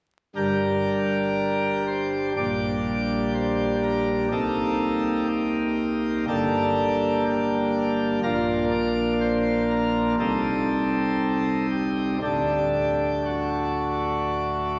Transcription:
0.36 G1 G2 G3 D4 G4 A#4
1.87 C5
2.36 A#1 A#2 G3 D4 G4 D5
3.35 C5
3.83 A#4
4.32 C2 C3 A#3 D#4 G4 A4
5.29 G4
6.28 G1 G2 A#3 D4 G4 A4
7.26 G4
8.23 A#1 A#2 A#3 D4 F4 A#4
8.71 D5
9.21 C5
9.71 A#4
10.19 C2 C3 G3 C4 D#4 A4
11.71 G4
12.22 D1 D2 D3 A3 D4 G4
13.25 F#4

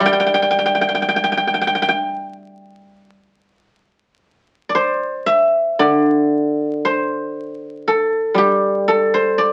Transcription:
Already playing: D5 E5 A5
0.00 G3
0.06 G5
0.13 G5
0.20 G5
0.26 G5
0.34 G5
0.42 G5
0.51 G5
0.59 G5
0.66 G5
0.75 G5
0.81 G5
0.89 G5
0.95 G5
1.02 G5
1.09 G5
1.16 G5
1.24 G5
1.32 G5
1.37 G5
1.47 G5
1.54 G5
1.61 G5
1.67 G5
1.75 G5
1.82 G5
1.89 G5
4.69 D5
4.75 C5
5.26 E5
5.79 D3 D5
6.85 C5
7.88 A4
8.34 G3 G4
8.88 A4
9.14 C5
9.38 D5

